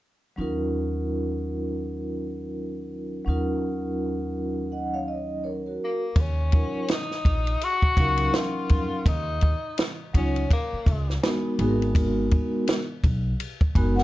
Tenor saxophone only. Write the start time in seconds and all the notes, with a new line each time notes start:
5.84 A#3
6.20 C#4
6.91 D#4
7.64 F#4
8.36 F4
9.08 D#4
10.17 C#4
10.53 A#3